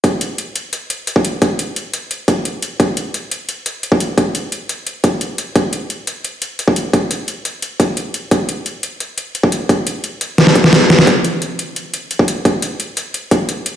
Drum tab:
HH |x-x-x-x-x-x-x-x-|x-x-x-x-x-x-x-x-|x-x-x-x-x-x-x-x-|x-x-x-x-x-x-x-x-|
SD |----------------|----------------|----------------|----------------|
BD |o------------o--|o---------o-----|o------------o--|o---------o-----|

HH |x-x-x-x-x-x-x-x-|x-x-x-x-x-x-x-x-|x-x-x-x-x-x-x-x-|x-x-x-x-x-x-x-x-|
SD |----------------|----------------|----------------|--------oo-oo-oo|
BD |o------------o--|o---------o-----|o------------o--|o---------o-----|

HH |x-x-x-x-x-x-x-x-|x-x-x-x-x-x-x-x-|
SD |----------------|----------------|
BD |o------------o--|o---------o-----|